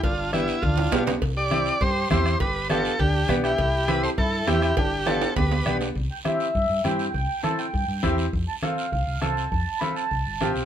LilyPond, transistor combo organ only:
\new Staff \with { instrumentName = "Transistor combo organ" } { \time 4/4 \key c \major \tempo 4 = 203 f'4 e'4 f'4. r8 | r8 d''4. c''4 c''4 | b'4 a'4 g'4 b'8 g'8~ | g'4 b'8 c''8 a'4 g'4 |
g'4 a'4 b'4. r8 | r1 | r1 | r1 |
r1 | }